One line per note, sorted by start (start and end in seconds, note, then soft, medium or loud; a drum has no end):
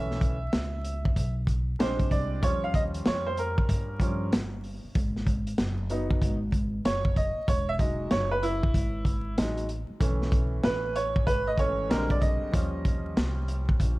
0.00 0.50 B1 medium
0.00 0.35 E3 medium
0.00 0.35 A3 soft
0.00 0.35 C#4 medium
0.00 1.33 E5 loud
0.11 snare soft
0.21 kick medium
0.21 closed hi-hat medium
0.53 1.14 C#2 loud
0.53 snare loud
0.53 closed hi-hat medium
0.85 closed hi-hat medium
1.05 kick medium
1.16 1.77 B1 medium
1.16 kick medium
1.16 closed hi-hat medium
1.47 kick medium
1.47 closed hi-hat medium
1.79 2.10 A#1 medium
1.79 2.39 G3 medium
1.79 2.40 G#3 medium
1.79 2.40 C4 medium
1.79 2.40 D4 medium
1.79 2.13 C5 medium
1.79 snare loud
1.79 closed hi-hat medium
1.99 kick medium
1.99 closed hi-hat soft
2.11 2.41 C2 medium
2.11 2.44 D5 medium
2.11 kick medium
2.11 closed hi-hat medium
2.42 3.03 D#2 loud
2.42 3.99 F3 medium
2.42 3.99 G3 soft
2.42 4.00 C#4 medium
2.42 2.64 C#5 loud
2.42 kick loud
2.42 closed hi-hat loud
2.64 2.74 F5 medium
2.74 2.82 D#5 loud
2.74 kick medium
2.74 closed hi-hat medium
2.94 closed hi-hat medium
3.06 3.55 F2 medium
3.06 3.25 C#5 medium
3.06 snare loud
3.06 closed hi-hat medium
3.26 3.38 C5 medium
3.37 4.29 A#4 medium
3.37 closed hi-hat medium
3.58 muted upright bass stroke soft
3.58 kick loud
3.69 4.29 G2 medium
3.69 kick medium
3.69 closed hi-hat medium
4.00 4.29 F3 soft
4.00 4.29 G3 soft
4.00 4.29 C#4 medium
4.00 kick medium
4.00 closed hi-hat medium
4.32 4.81 G1 medium
4.32 snare loud
4.32 closed hi-hat medium
4.64 open hi-hat soft
4.84 muted upright bass stroke soft
4.95 5.55 G#1 loud
4.95 kick loud
4.95 closed hi-hat loud
5.16 snare soft
5.26 kick medium
5.26 closed hi-hat medium
5.47 closed hi-hat medium
5.58 6.19 F#1 medium
5.58 snare loud
5.58 closed hi-hat medium
5.90 6.35 F#3 medium
5.90 6.36 B3 soft
5.90 6.36 D#4 medium
5.90 closed hi-hat medium
6.11 kick loud
6.22 6.82 G#1 loud
6.22 kick medium
6.22 closed hi-hat medium
6.52 kick medium
6.52 closed hi-hat medium
6.85 7.34 F#1 medium
6.85 7.18 C#5 loud
6.85 snare loud
6.85 closed hi-hat loud
7.05 kick medium
7.16 7.46 D#5 medium
7.16 kick medium
7.16 closed hi-hat medium
7.37 muted upright bass stroke soft
7.48 8.08 E1 medium
7.48 7.69 C#5 medium
7.48 kick loud
7.48 closed hi-hat loud
7.69 7.74 E5 loud
7.79 8.25 F#3 medium
7.79 8.25 G#3 soft
7.79 8.25 D#4 medium
7.79 8.12 D#5 medium
7.79 kick medium
7.79 closed hi-hat medium
8.11 8.71 F#1 loud
8.11 8.30 C#5 medium
8.11 snare medium
8.11 closed hi-hat medium
8.31 8.42 B4 medium
8.43 9.34 E4 loud
8.43 closed hi-hat medium
8.63 kick loud
8.74 9.34 G#1 medium
8.74 kick medium
8.74 closed hi-hat medium
9.05 kick medium
9.05 closed hi-hat medium
9.37 9.87 A1 medium
9.37 9.66 F#3 medium
9.37 9.66 G#3 soft
9.37 9.66 D#4 medium
9.37 snare loud
9.37 closed hi-hat loud
9.57 closed hi-hat soft
9.69 closed hi-hat medium
9.90 muted upright bass stroke soft
10.00 10.61 B1 medium
10.00 11.57 E3 medium
10.00 11.58 A3 soft
10.00 11.58 C#4 medium
10.00 kick loud
10.00 closed hi-hat loud
10.22 snare soft
10.32 kick loud
10.32 closed hi-hat medium
10.63 11.24 A1 loud
10.63 10.97 B4 medium
10.63 snare loud
10.63 closed hi-hat medium
10.96 11.28 C#5 medium
10.96 closed hi-hat medium
11.16 kick loud
11.27 11.87 G#1 medium
11.27 11.48 B4 loud
11.27 kick medium
11.27 closed hi-hat medium
11.47 11.59 D#5 loud
11.58 11.87 E3 medium
11.58 11.87 A3 medium
11.58 11.88 C#4 medium
11.58 11.91 C#5 loud
11.58 kick medium
11.58 closed hi-hat medium
11.89 12.40 A#1 loud
11.89 12.51 D3 medium
11.89 12.50 G3 medium
11.89 12.50 G#3 medium
11.89 12.50 C4 medium
11.89 12.11 A#4 medium
11.89 snare loud
11.89 closed hi-hat loud
12.10 12.21 D5 medium
12.10 kick loud
12.10 closed hi-hat soft
12.21 13.12 D#5 loud
12.21 kick medium
12.21 closed hi-hat medium
12.42 muted upright bass stroke soft
12.52 13.13 D#2 loud
12.52 13.99 F3 medium
12.52 13.99 G3 soft
12.52 13.99 C#4 medium
12.52 kick loud
12.52 closed hi-hat loud
12.85 kick loud
12.85 closed hi-hat medium
13.17 13.77 C2 medium
13.17 snare loud
13.17 closed hi-hat medium
13.48 closed hi-hat medium
13.69 kick loud
13.80 13.99 A#1 loud
13.80 kick medium
13.80 closed hi-hat medium